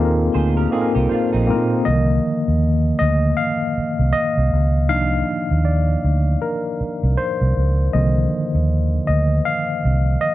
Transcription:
0.00 0.28 D#2 medium
0.00 0.71 A#3 medium
0.00 0.72 C4 medium
0.00 0.73 D#4 medium
0.00 0.74 F4 medium
0.00 1.87 G#4 loud
0.00 0.75 A4 medium
0.00 0.05 A#4 medium
0.05 0.65 A#4 medium
0.34 0.66 D2 medium
0.34 0.55 G#4 medium
0.34 0.55 C5 medium
0.57 0.71 G4 medium
0.57 0.71 A#4 medium
0.71 1.36 A#3 medium
0.71 1.37 C4 medium
0.71 1.37 D#4 medium
0.71 0.93 F4 medium
0.71 1.38 F4 medium
0.71 0.93 G#4 medium
0.71 0.81 A4 medium
0.81 1.41 A#4 medium
0.95 1.08 C2 medium
0.95 1.10 D#4 medium
0.95 1.09 G4 medium
1.09 1.32 D4 medium
1.09 1.31 F4 medium
1.09 1.81 C5 medium
1.33 1.51 A#1 medium
1.33 1.84 C4 medium
1.33 1.83 D#4 medium
1.47 1.80 A#2 medium
1.47 1.80 A#3 medium
1.47 1.80 C4 medium
1.47 1.80 D#4 medium
1.47 1.81 F4 medium
1.47 1.81 A#4 medium
1.85 2.18 C2 loud
1.85 2.39 D3 medium
1.85 2.39 D#3 medium
1.85 2.39 F3 soft
1.85 2.39 A#3 soft
1.85 2.57 D#5 loud
2.48 2.91 D#2 medium
2.99 3.32 D2 medium
2.99 3.34 D#5 loud
3.37 4.15 F5 loud
3.78 muted fingered electric bass stroke soft
3.99 4.11 C2 medium
4.13 4.91 D#5 loud
4.37 4.50 C2 medium
4.53 4.91 C#2 medium
4.89 5.22 C2 loud
4.89 7.89 F3 medium
4.89 7.89 A#3 soft
4.89 7.89 D4 medium
4.89 7.89 D#4 medium
4.89 5.67 F5 loud
5.51 5.95 D#2 medium
5.65 6.43 D5 medium
6.04 6.35 D2 medium
6.42 7.13 A#4 medium
6.81 muted fingered electric bass stroke soft
7.03 7.15 C2 medium
7.17 7.96 C5 loud
7.41 7.53 C2 medium
7.57 7.88 C#2 medium
7.93 8.25 C2 loud
7.93 9.04 D3 medium
7.93 9.03 D#3 medium
7.93 9.03 F3 medium
7.93 9.04 A#3 soft
7.93 8.65 D#5 medium
8.55 8.98 D#2 medium
9.07 9.39 D2 medium
9.07 9.46 D#5 medium
9.45 10.23 F5 loud
9.85 10.15 C2 loud
10.21 10.35 D#5 loud

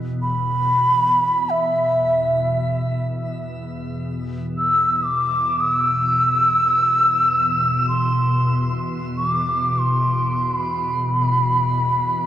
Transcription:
0.00 3.07 E2 medium
0.00 3.07 B2 medium
0.22 1.51 B5 loud
1.50 2.85 E5 medium
3.08 12.26 E2 medium
3.08 12.26 B2 medium
4.58 4.96 E6 medium
4.96 5.05 E6 medium
5.04 5.62 D6 medium
5.61 7.86 E6 medium
7.89 8.85 C6 medium
9.17 9.28 C#6 medium
9.28 9.80 D6 medium
9.78 10.47 C6 medium
10.46 12.26 B5 medium

